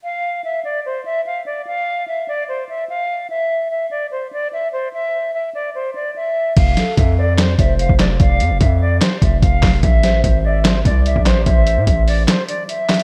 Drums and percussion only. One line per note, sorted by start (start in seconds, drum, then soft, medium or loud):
6.57 kick loud
6.57 closed hi-hat medium
6.57 crash loud
6.77 snare medium
6.77 closed hi-hat medium
6.97 kick medium
6.97 closed hi-hat medium
7.38 snare loud
7.38 clap loud
7.38 closed hi-hat medium
7.59 kick medium
7.59 closed hi-hat medium
7.79 closed hi-hat medium
7.89 kick medium
7.99 snare loud
7.99 clap medium
7.99 closed hi-hat medium
8.20 kick loud
8.20 closed hi-hat medium
8.40 closed hi-hat medium
8.61 kick medium
8.61 closed hi-hat medium
9.01 snare loud
9.01 clap loud
9.01 closed hi-hat medium
9.22 kick medium
9.22 closed hi-hat medium
9.42 kick loud
9.42 closed hi-hat medium
9.63 kick medium
9.63 snare loud
9.63 clap medium
9.63 open hi-hat medium
9.83 kick loud
9.83 closed hi-hat medium
10.03 snare medium
10.03 closed hi-hat medium
10.24 kick medium
10.24 closed hi-hat medium
10.65 snare loud
10.65 clap loud
10.65 closed hi-hat medium
10.85 kick medium
10.85 closed hi-hat medium
11.06 closed hi-hat medium
11.16 kick medium
11.26 snare loud
11.26 clap medium
11.26 closed hi-hat medium
11.46 kick loud
11.46 closed hi-hat medium
11.67 closed hi-hat medium
11.87 kick medium
11.87 closed hi-hat medium
12.08 open hi-hat medium
12.28 snare loud
12.28 clap loud
12.28 closed hi-hat medium
12.49 closed hi-hat medium
12.69 closed hi-hat medium
12.89 snare loud
12.89 clap medium
12.89 closed hi-hat medium
12.89 open hi-hat medium
12.94 closed hi-hat medium
12.99 closed hi-hat medium